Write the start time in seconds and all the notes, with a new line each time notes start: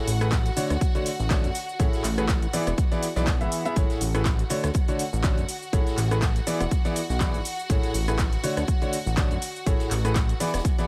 Already playing: F#4 F#5
0.07 A1, closed hi-hat, open hi-hat, shaker
0.21 A2 A3 E4 G#4 B4, cross-stick, closed hi-hat, shaker
0.32 kick, snare, clap, closed hi-hat, shaker
0.46 snare, closed hi-hat, shaker
0.56 D3 A3 D4 F#4 C#5, closed hi-hat, open hi-hat, shaker
0.70 D2, cross-stick, snare, closed hi-hat, shaker
0.81 kick, closed hi-hat, shaker
0.95 D3 A3 D4 F#4 C#5, closed hi-hat, shaker
1.06 snare, closed hi-hat, open hi-hat, shaker
1.19 A1, shaker
1.30 D3 A3 D4 F#4 C#5, kick, snare, clap, closed hi-hat, shaker
1.44 F#2, closed hi-hat, shaker
1.54 snare, closed hi-hat, open hi-hat, shaker
1.69 shaker
1.80 A1 A2 A3 E4 G#4 C#5, kick, closed hi-hat, shaker
1.93 snare, closed hi-hat, shaker
2.04 A1, clap, closed hi-hat, open hi-hat, shaker
2.18 A2 A3 E4 G#4 B4, cross-stick, closed hi-hat, shaker
2.28 kick, snare, clap, closed hi-hat, shaker
2.42 closed hi-hat, shaker
2.53 E3 B3 E4 G#4 D5, closed hi-hat, open hi-hat, shaker
2.67 E1, cross-stick, closed hi-hat, shaker
2.77 kick, closed hi-hat, shaker
2.91 E3 B3 E4 G#4 D5, snare, closed hi-hat, shaker
3.02 snare, closed hi-hat, open hi-hat, shaker
3.16 B1 E3 B3 E4 G#4 D5, snare, closed hi-hat, shaker
3.27 kick, snare, clap, closed hi-hat, shaker
3.41 G#1 E3 B3 E4 G#4 E5, closed hi-hat, shaker
3.52 snare, closed hi-hat, open hi-hat, shaker
3.65 B3 E4 G#4 E5, closed hi-hat, shaker
3.76 A1 A2 A3 F#4 G#4 C#5 F#5, kick, closed hi-hat, shaker
3.90 snare, closed hi-hat, shaker
4.01 A1, closed hi-hat, open hi-hat, shaker
4.15 A2 A3 E4 G#4 B4, cross-stick, closed hi-hat, shaker
4.25 kick, snare, clap, closed hi-hat, shaker
4.39 snare, closed hi-hat, shaker
4.49 D3 A3 D4 F#4 C#5, closed hi-hat, open hi-hat, shaker
4.63 D2, cross-stick, snare, closed hi-hat, shaker
4.74 kick, closed hi-hat, shaker
4.88 D3 A3 D4 F#4 C#5, closed hi-hat, shaker
4.99 snare, closed hi-hat, open hi-hat, shaker
5.13 A1, shaker
5.23 D3 A3 D4 F#4 C#5, kick, snare, clap, closed hi-hat, shaker
5.38 F#2, closed hi-hat, shaker
5.48 snare, closed hi-hat, open hi-hat, shaker
5.63 shaker
5.73 A1 A2 A3 E4 G#4 C#5, kick, closed hi-hat, shaker
5.87 snare, closed hi-hat, shaker
5.97 A1, clap, closed hi-hat, open hi-hat, shaker
6.11 A2 A3 E4 G#4 B4, cross-stick, closed hi-hat, shaker
6.22 kick, snare, clap, closed hi-hat, shaker
6.36 closed hi-hat, shaker
6.47 E3 B3 E4 G#4 D5, closed hi-hat, open hi-hat, shaker
6.60 E1, cross-stick, closed hi-hat, shaker
6.71 kick, closed hi-hat, shaker
6.84 E3 B3 E4 G#4 D5, snare, closed hi-hat, shaker
6.96 closed hi-hat, open hi-hat, shaker
7.10 B1, snare, shaker
7.20 E3 B3 E4 G#4 D5, kick, snare, clap, closed hi-hat, shaker
7.34 G#1, closed hi-hat, shaker
7.45 snare, closed hi-hat, open hi-hat, shaker
7.59 shaker
7.69 A1 A2 A3 E4 G#4 C#5, kick, closed hi-hat, shaker
7.83 snare, closed hi-hat, shaker
7.94 A1, closed hi-hat, open hi-hat, shaker
8.08 A2 A3 E4 G#4 B4, cross-stick, closed hi-hat, shaker
8.18 kick, snare, clap, closed hi-hat, shaker
8.33 snare, closed hi-hat, shaker
8.43 D3 A3 D4 F#4 C#5, closed hi-hat, open hi-hat, shaker
8.57 D2, cross-stick, snare, closed hi-hat, shaker
8.67 kick, closed hi-hat, shaker
8.82 D3 A3 D4 F#4 C#5, closed hi-hat, shaker
8.93 snare, closed hi-hat, open hi-hat, shaker
9.06 A1, shaker
9.17 D3 A3 D4 F#4 C#5, kick, snare, clap, closed hi-hat, shaker
9.31 F#2, closed hi-hat, shaker
9.42 snare, closed hi-hat, open hi-hat, shaker
9.56 shaker
9.66 A1 A2 A3 E4 G#4 C#5, kick, closed hi-hat, shaker
9.80 snare, closed hi-hat, shaker
9.91 A1, clap, closed hi-hat, open hi-hat, shaker
10.05 A2 A3 E4 G#4 B4, cross-stick, closed hi-hat, shaker
10.15 kick, snare, clap, closed hi-hat, shaker
10.29 closed hi-hat, shaker
10.40 E3 B3 E4 G#4 D5, snare, closed hi-hat, open hi-hat, shaker
10.47 snare, closed hi-hat
10.54 E1, cross-stick, snare, closed hi-hat, shaker
10.59 snare, closed hi-hat
10.65 kick, closed hi-hat, shaker
10.78 E3 B3 E4 G#4 D5, snare, closed hi-hat, shaker